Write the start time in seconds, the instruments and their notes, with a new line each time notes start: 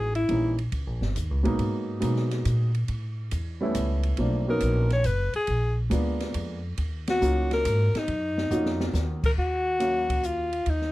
Already playing: upright bass A1, alto saxophone G#4
0.15 alto saxophone E4, ride
0.28 upright bass A#1, grand piano E3 G3 A#3 C#4 D#4, kick, ride
0.58 ride
0.72 upright bass C#2, kick, ride
0.87 upright bass A#1
1.01 upright bass G1, snare
1.16 upright bass D#2, kick, hi-hat pedal, ride
1.30 upright bass C#2
1.43 upright bass A#1, grand piano F#3 G#3 A#3 B3 D#4, ride
1.59 upright bass G#2, kick, ride
2.00 upright bass B2, grand piano F#3 G#3 A#3 B3 D#4, kick, hi-hat pedal, ride
2.16 snare
2.31 snare, ride
2.45 upright bass A#2, kick, hi-hat pedal, ride
2.75 ride
2.88 upright bass A2, kick, ride
3.31 upright bass E2, kick, hi-hat pedal, ride
3.61 grand piano G3 A3 B3 C#4 E4
3.75 upright bass C#2, kick, hi-hat pedal, ride
4.03 ride
4.17 upright bass B1, grand piano F3 A3 A#3 C4 D4, kick, ride
4.47 grand piano F#3 A#3 B3 C#4 D#4, alto saxophone A#4
4.60 upright bass A#1, kick, hi-hat pedal, ride
4.90 alto saxophone C#5, snare, ride
5.04 upright bass F#1, alto saxophone B4, kick, hi-hat pedal, ride
5.33 alto saxophone G#4, muted upright bass stroke, ride
5.47 upright bass A#1, kick, ride
5.90 upright bass D2, grand piano G#3 A#3 B3 D4 F4, kick, hi-hat pedal, ride
6.20 snare, ride
6.34 upright bass F2, kick, ride
6.78 upright bass D#2, kick, ride
7.07 alto saxophone F#4, snare, ride
7.21 upright bass C#2, grand piano F#3 A#3 C#4 D#4 F4, hi-hat pedal
7.51 alto saxophone A#4, snare, ride
7.65 upright bass G#2, kick, hi-hat pedal, ride
7.94 alto saxophone D#4, muted upright bass stroke, snare, ride
8.08 upright bass F#2, kick, ride
8.38 snare
8.51 upright bass F2, grand piano A#3 C#4 D#4 F4 F#4, hi-hat pedal
8.66 snare
8.80 snare
8.93 upright bass D#2, snare, hi-hat pedal
9.24 alto saxophone A#4, kick, crash
9.37 upright bass D#2, alto saxophone F#4, kick
9.79 grand piano F#3 A#3 C#4 F5, hi-hat pedal, ride
10.10 kick, ride
10.23 alto saxophone F4, hi-hat pedal
10.53 ride
10.66 upright bass D#2, alto saxophone D#4, kick, ride
10.81 snare